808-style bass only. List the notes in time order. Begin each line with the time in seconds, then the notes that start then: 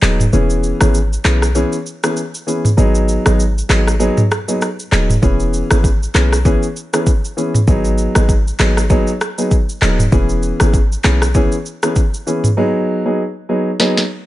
0.02 D#1
0.33 E1
0.81 G#1
1.25 B1
2.78 G#1
3.26 G#1
3.70 G#1
4.92 D#1
5.23 E1
5.71 G#1
6.15 B1
7.68 G#1
8.16 G#1
8.59 G#1
9.82 D#1
10.12 E1
10.61 G#1
11.04 B1